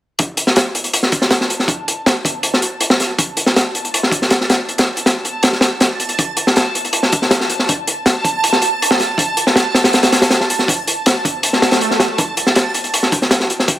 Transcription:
0.18 A5, kick, closed hi-hat
0.37 closed hi-hat
0.47 snare
0.56 snare, closed hi-hat
0.75 closed hi-hat
0.84 closed hi-hat
0.93 closed hi-hat
1.03 snare
1.12 kick, closed hi-hat
1.22 snare
1.30 snare, closed hi-hat
1.41 snare
1.50 closed hi-hat
1.60 snare
1.68 kick, closed hi-hat
1.88 closed hi-hat
2.06 snare, closed hi-hat
2.25 kick, closed hi-hat
2.43 closed hi-hat
2.54 snare
2.62 closed hi-hat
2.80 closed hi-hat
2.90 snare
3.00 snare, closed hi-hat
3.19 kick, closed hi-hat
3.37 closed hi-hat
3.46 snare
3.56 snare, closed hi-hat
3.75 closed hi-hat
3.85 closed hi-hat
3.94 closed hi-hat
4.03 snare
4.12 kick, closed hi-hat
4.22 snare
4.30 snare, closed hi-hat
4.41 snare
4.50 snare, closed hi-hat
4.69 closed hi-hat
4.78 snare, closed hi-hat
4.97 closed hi-hat
5.06 snare, closed hi-hat
5.25 closed hi-hat
5.43 snare, closed hi-hat
5.53 snare
5.61 snare, closed hi-hat
5.80 snare, closed hi-hat
6.00 closed hi-hat
6.09 closed hi-hat
6.19 kick, closed hi-hat
6.37 closed hi-hat
6.47 snare
6.56 snare, closed hi-hat
6.75 closed hi-hat
6.85 closed hi-hat
6.93 closed hi-hat
7.03 snare
7.12 kick, closed hi-hat
7.22 snare
7.31 snare, closed hi-hat
7.41 snare
7.50 closed hi-hat
7.59 snare
7.69 kick, closed hi-hat
7.87 closed hi-hat
8.06 snare, closed hi-hat
8.24 kick, closed hi-hat
8.44 closed hi-hat
8.53 snare
8.62 closed hi-hat
8.82 closed hi-hat
8.91 snare
9.00 snare, closed hi-hat
9.18 kick, closed hi-hat
9.37 closed hi-hat
9.47 snare
9.56 snare, closed hi-hat
9.74 snare, closed hi-hat
9.84 snare, closed hi-hat
9.93 snare, closed hi-hat
10.03 snare, closed hi-hat
10.12 snare, closed hi-hat
10.22 snare, closed hi-hat
10.30 snare, closed hi-hat
10.41 snare
10.50 closed hi-hat
10.59 snare
10.68 kick, closed hi-hat
10.87 closed hi-hat
11.06 snare, closed hi-hat
11.25 kick, closed hi-hat
11.43 closed hi-hat, swell
11.53 snare
11.62 snare, closed hi-hat
11.71 snare, closed hi-hat
11.81 closed hi-hat
11.91 snare
12.00 snare, closed hi-hat
12.18 G5, kick, closed hi-hat
12.37 closed hi-hat
12.47 snare
12.55 snare, closed hi-hat
12.74 closed hi-hat
12.84 closed hi-hat
12.94 closed hi-hat
13.03 snare
13.12 kick, closed hi-hat
13.22 snare
13.31 snare, closed hi-hat
13.40 snare
13.50 closed hi-hat
13.59 snare
13.68 kick, closed hi-hat

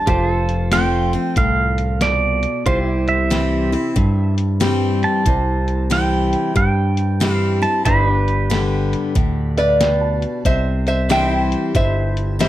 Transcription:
Already playing: A5
0.06 F1 F2 F4 G4 A4 C5, kick, closed hi-hat
0.33 A4
0.49 closed hi-hat
0.72 F3 A3 C4 F4 G5, snare, closed hi-hat
1.13 C4 F4, closed hi-hat
1.36 C2 A2 F5, kick, closed hi-hat
1.78 closed hi-hat
2.01 B2 D5, snare, closed hi-hat
2.43 closed hi-hat
2.66 C2 C3 E4 F4 G4 C5, kick, closed hi-hat
2.86 E4
3.08 E5, closed hi-hat
3.30 E3 G3 C4 E4, snare, closed hi-hat
3.72 C4 E4, closed hi-hat
3.96 G2, kick, closed hi-hat
4.38 closed hi-hat
4.60 E3 G3 C4 E4, snare, closed hi-hat
5.03 A5, closed hi-hat
5.26 C2 C3 E4 G4 C5, kick, closed hi-hat
5.68 closed hi-hat
5.90 E3 G3 C4 E4 G5, snare, closed hi-hat
6.33 closed hi-hat
6.56 G2 G5, kick, closed hi-hat
6.97 closed hi-hat
7.20 E3 G3 C4 E4, snare, closed hi-hat
7.34 F5
7.62 C4 E4 A5, closed hi-hat
7.84 G1 G2 D4 E4 G4 B4 B5, kick, closed hi-hat
7.88 C5
8.08 D4 B4
8.28 closed hi-hat
8.50 D3 G3 B3 G4, snare, closed hi-hat
8.93 closed hi-hat
9.15 D2 A2, kick, closed hi-hat
9.57 B4 D5 E5, closed hi-hat
9.69 F5
9.81 B2 G5, snare, closed hi-hat
10.01 A5
10.22 closed hi-hat
10.45 C2 C3 C5 E5, kick, closed hi-hat
10.87 C5 E5, closed hi-hat
11.09 E3 G3 C4 D4 E4 G4 C5 E5 G5, snare, closed hi-hat
11.35 E4
11.52 closed hi-hat
11.75 G1 G2 C5 E5, kick, closed hi-hat
12.17 closed hi-hat
12.39 E3 G3 C4 E4 C5 E5, snare, closed hi-hat

